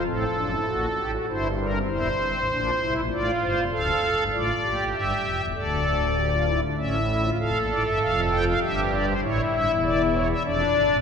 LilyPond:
<<
  \new Staff \with { instrumentName = "Pipe organ" } { \time 3/4 \key d \minor \tempo 4 = 98 << { a'2 c''8 bes'8 | c''2 d''8 c''8 | f''4 d''4 e''4 | d''2 e''4 |
f''8 d''16 e''16 f''8 g''16 f''16 e''8 d''16 c''16 | cis''8 e''8 d''8 cis''16 e''16 d''4 | } \\ { c'8 d'16 e'16 fis'8 g'16 fis'16 e'8 d'16 c'16 | e'8 c'8 d'8 e'8 f'4 | a'4 f'8 g'4. | a'4 g'16 f'16 e'16 d'16 cis'8 e'16 f'16 |
a'2 g'4 | e'2 d'4 | } >> }
  \new Staff \with { instrumentName = "Pipe organ" } { \clef bass \time 3/4 \key d \minor <a,, a,>8 <fis,, fis,>8 <bes,, bes,>8 <a,, a,>8 <g,, g,>4 | <e,, e,>8 <g,, g,>16 <a,, a,>16 <bes,, bes,>8 <c, c>16 <bes,, bes,>16 <a,, a,>8 <g,, g,>16 <f,, f,>16 | <d,, d,>8 <f,, f,>16 <g,, g,>16 <a,, a,>8 <bes,, bes,>16 <a,, a,>16 <g,, g,>8 <f,, f,>16 <e,, e,>16 | <d,, d,>2 <a,, a,>4 |
<f,, f,>16 <bes,, bes,>16 <a,, a,>16 <g,, g,>16 <f,, f,>4 <g,, g,>4 | <a,, a,>8 <g,, g,>16 <e,, e,>4~ <e,, e,>16 <f,, f,>8 <g,, g,>16 <a,, a,>16 | }
>>